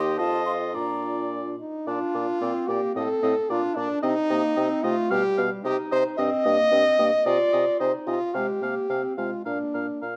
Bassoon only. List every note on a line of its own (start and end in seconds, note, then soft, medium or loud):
0.00 0.20 D#2 medium
0.19 0.76 F2 medium
0.75 1.59 A#2 medium
1.87 1.99 A#2 medium
2.15 2.27 A#2 medium
2.42 2.54 A#2 medium
2.69 2.81 A#2 medium
2.96 3.08 A2 medium
3.23 3.35 A2 medium
3.50 3.62 A#2 medium
3.76 3.88 A#2 medium
4.03 4.15 C3 medium
4.30 4.42 C3 medium
4.57 4.69 C3 medium
4.84 4.96 C3 medium
5.11 5.23 B2 medium
5.38 5.50 B2 medium
5.64 5.76 C3 medium
5.92 6.04 C3 medium
6.18 6.30 G2 medium
6.45 6.57 G2 medium
6.72 6.84 G2 medium
6.99 7.11 G2 medium
7.26 7.38 C3 medium
7.53 7.65 C3 medium
7.80 7.92 C3 medium
8.07 8.19 C3 medium
8.34 8.47 C3 medium
8.62 8.74 C3 medium
8.90 9.02 C3 medium
9.18 9.30 C3 soft
9.46 9.58 A#2 medium
9.74 9.87 A#2 soft
10.02 10.15 A#2 soft